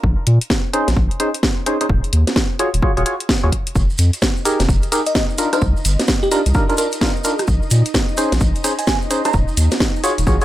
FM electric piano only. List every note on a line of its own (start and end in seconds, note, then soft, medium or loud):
5.07 5.12 D#5 medium
5.53 5.64 C5 medium
6.23 6.28 G4 medium
6.32 6.41 G4 medium
6.78 7.44 A#4 medium
8.79 8.84 G#5 medium
8.87 8.97 G#5 medium
9.25 9.36 A#5 medium